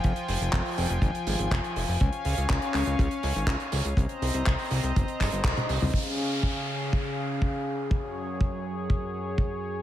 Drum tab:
HH |xxoxxooxxxoxxxoo|xxoxxxoxxxoxxxox|xxoxxooxxxoxxxoo|----------------|
CP |----x-------x---|----x-x-----x---|----x-----x-x---|----------------|
T1 |----------------|----------------|------------oo--|----------------|
T2 |----------------|----------------|---------------o|----------------|
BD |o---o---o---o---|o---o---o---o---|o---o---o-o-o---|o---o---o---o---|

HH |----------------|
CP |----------------|
T1 |----------------|
T2 |----------------|
BD |o---o---o---o---|